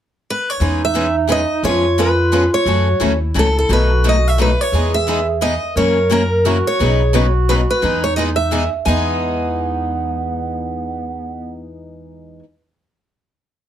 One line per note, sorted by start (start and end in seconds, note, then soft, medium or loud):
0.30 0.50 B4 medium
0.50 0.83 C#5 medium
0.60 1.43 E2 medium
0.60 0.81 E3 medium
0.60 0.81 G#3 medium
0.60 0.81 B3 medium
0.60 0.81 C#4 medium
0.60 1.66 D#4 medium
0.60 0.81 G#4 medium
0.60 0.81 B4 medium
0.85 1.15 E5 medium
0.95 1.06 E3 medium
0.95 1.06 G#3 medium
0.95 1.05 B3 medium
0.95 1.06 C#4 medium
0.95 1.06 G#4 medium
0.95 1.06 B4 medium
1.28 1.40 E3 medium
1.28 1.40 G#3 medium
1.28 1.40 B3 medium
1.28 1.40 C#4 medium
1.28 1.40 G#4 medium
1.28 1.40 B4 medium
1.28 1.63 D#5 medium
1.63 2.46 F2 medium
1.63 1.84 F3 medium
1.63 1.84 G#3 medium
1.63 1.84 B3 medium
1.63 1.84 C#4 medium
1.63 2.68 F4 medium
1.63 1.84 F4 medium
1.63 1.85 G#4 medium
1.63 1.84 B4 medium
1.63 2.00 C#5 medium
1.98 2.09 F3 medium
1.98 2.09 G#3 medium
1.98 2.09 B3 medium
1.98 2.09 C#4 medium
1.98 2.09 F4 medium
1.98 2.09 G#4 medium
1.98 2.09 B4 medium
1.98 2.50 B4 medium
2.32 2.43 F3 medium
2.32 2.43 G#3 medium
2.32 2.43 B3 medium
2.32 2.43 C#4 medium
2.32 2.44 F4 medium
2.32 2.43 G#4 medium
2.32 2.44 B4 medium
2.54 3.18 C#5 medium
2.65 2.93 F#2 medium
2.65 2.87 C#3 medium
2.65 2.87 E3 medium
2.65 2.87 F#3 medium
2.65 2.87 A3 medium
2.65 2.87 C#4 medium
2.65 2.87 E4 medium
2.65 3.02 F#4 medium
2.65 2.88 F#4 medium
2.65 2.87 A4 medium
3.00 3.30 D#2 medium
3.00 3.11 C#3 medium
3.00 3.11 E3 medium
3.00 3.11 F#3 medium
3.00 3.12 A3 medium
3.00 3.12 C#4 medium
3.00 3.73 E4 medium
3.00 3.12 E4 medium
3.00 3.12 F#4 medium
3.00 3.12 A4 medium
3.34 3.64 C#2 medium
3.34 3.46 C#3 medium
3.34 3.46 E3 medium
3.34 3.46 F#3 medium
3.34 3.46 A3 medium
3.34 3.47 C#4 medium
3.34 3.46 E4 medium
3.34 3.46 F#4 medium
3.34 3.47 A4 medium
3.39 3.57 A4 medium
3.59 3.72 A4 medium
3.69 4.52 B1 medium
3.69 3.90 B2 medium
3.69 3.90 D#3 medium
3.69 3.90 F#3 medium
3.69 3.90 A3 medium
3.69 3.90 B3 medium
3.69 3.90 D#4 medium
3.69 3.90 F#4 medium
3.69 4.60 F#4 medium
3.69 3.90 A4 medium
3.69 4.07 B4 medium
4.04 4.15 B2 medium
4.04 4.15 D#3 medium
4.04 4.15 F#3 medium
4.04 4.15 A3 medium
4.04 4.15 B3 medium
4.04 4.15 D#4 medium
4.04 4.16 F#4 medium
4.04 4.15 A4 medium
4.09 4.28 D#5 medium
4.28 4.41 E5 medium
4.39 4.50 B2 medium
4.39 4.50 D#3 medium
4.39 4.50 F#3 medium
4.39 4.50 A3 medium
4.39 4.50 B3 medium
4.39 4.50 D#4 medium
4.39 4.50 F#4 medium
4.39 4.50 A4 medium
4.39 4.61 B4 medium
4.61 4.94 C#5 medium
4.72 5.55 E2 medium
4.72 4.94 E3 medium
4.72 4.94 G#3 medium
4.72 4.94 B3 medium
4.72 4.94 D#4 medium
4.72 5.46 G#4 medium
4.72 4.94 G#4 medium
4.94 5.26 E5 medium
5.08 5.18 E3 medium
5.08 5.19 G#3 medium
5.08 5.18 B3 medium
5.08 5.19 D#4 medium
5.08 5.19 G#4 medium
5.42 5.53 E3 medium
5.42 5.53 G#3 medium
5.42 5.53 B3 medium
5.42 5.53 D#4 medium
5.42 5.53 G#4 medium
5.42 5.74 D#5 medium
5.76 6.59 F#2 medium
5.76 5.97 C#3 medium
5.76 5.97 E3 medium
5.76 5.97 F#3 medium
5.76 5.97 A#3 medium
5.76 5.97 C#4 medium
5.76 5.97 E4 medium
5.76 5.97 F#4 medium
5.76 6.47 A#4 loud
5.76 5.98 A#4 medium
5.76 6.12 C#5 medium
6.10 6.21 C#3 medium
6.10 6.21 E3 medium
6.10 6.22 F#3 medium
6.10 6.22 A#3 medium
6.10 6.22 C#4 medium
6.10 6.22 E4 medium
6.10 6.22 F#4 medium
6.10 6.22 A#4 medium
6.10 6.68 A#4 medium
6.45 6.56 C#3 medium
6.45 6.56 E3 medium
6.45 6.56 F#3 medium
6.45 6.56 A#3 medium
6.45 6.56 C#4 medium
6.45 6.56 E4 medium
6.45 6.82 F#4 medium
6.45 6.57 F#4 medium
6.45 6.57 A#4 medium
6.67 7.32 C#5 medium
6.79 7.63 B1 medium
6.79 7.00 B2 medium
6.79 7.00 C#3 medium
6.79 7.00 F#3 medium
6.79 7.00 B3 medium
6.79 7.00 D#4 medium
6.79 7.16 G#4 medium
6.79 7.00 B4 medium
7.13 7.25 B2 medium
7.13 7.25 C#3 medium
7.13 7.25 F#3 medium
7.13 7.25 B3 medium
7.13 7.25 D#4 medium
7.13 7.84 F#4 medium
7.13 7.25 B4 medium
7.49 7.60 B2 medium
7.49 7.60 C#3 medium
7.49 7.60 F#3 medium
7.49 7.60 B3 medium
7.49 7.60 D#4 medium
7.49 7.55 B4 medium
7.49 7.60 B4 medium
7.70 8.02 B4 medium
7.82 8.66 E2 medium
7.82 8.03 E3 medium
7.82 8.03 G#3 medium
7.82 8.03 B3 medium
7.82 8.04 D#4 medium
7.82 8.69 D#4 medium
7.82 8.04 G#4 medium
8.04 8.16 C#5 medium
8.16 8.29 E3 medium
8.16 8.29 G#3 medium
8.16 8.29 B3 medium
8.16 8.29 D#4 medium
8.16 8.29 G#4 medium
8.16 8.22 D#5 medium
8.36 8.69 E5 medium
8.52 8.63 E3 medium
8.52 8.63 G#3 medium
8.52 8.63 B3 medium
8.52 8.63 D#4 medium
8.52 8.63 G#4 medium
8.86 12.39 E2 medium
8.86 12.43 E3 medium
8.86 12.43 G#3 medium
8.86 11.70 B3 medium
8.86 12.44 B3 medium
8.86 12.44 D#4 medium
8.86 12.44 G#4 medium
8.86 12.39 G#5 medium